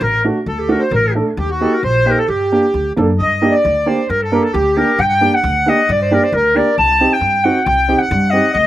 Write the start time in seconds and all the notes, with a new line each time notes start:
0.01 A1 A#4
0.24 A3 D4 F#4
0.46 D2 A4
0.59 G4
0.69 A3 D4 F#4 A#4
0.79 C5
0.91 A1 A#4
0.95 A#4
1.15 A3 D4 A4
1.37 D#2 G4
1.50 F#4
1.61 A#3 D#4 G4 A4
1.73 A#4
1.83 A#1 C5
2.06 A#3 D#4 G4 A#4
2.17 A4
2.28 G2 G4
2.52 A#3 D4 G4
2.74 D2
2.96 F#2 A#3 D4 A4
3.18 G2 D#5
3.42 A#3 D4 G4
3.51 D5
3.56 D5
3.65 D2
3.86 A#3 D4 G4 C5
4.07 G2 A#4 C5
4.11 A#4
4.22 A4
4.32 A#3 D4 G4 A#4
4.43 A4
4.54 D2 G4
4.77 A#3 D4 G4 A#4
4.99 G2 G5
5.09 F#5
5.13 G5
5.21 A#3 D4 G4
5.35 F#5
5.44 D2
5.66 A#3 D4 G4 D#5
5.89 G2 D5
6.02 C5
6.11 A#3 D4 G4 A#4
6.24 C5
6.32 D2 A#4
6.54 A#3 D4 G4 D5
6.78 C2 A5
7.00 C4 D#4 G4
7.13 G5
7.21 G2
7.44 C4 D#4 F#4 F#5
7.65 C2 G5
7.88 C4 D#4 G4
7.99 F#5
8.11 G2
8.30 C4 D#4 G4 D#5
8.54 D2 D#5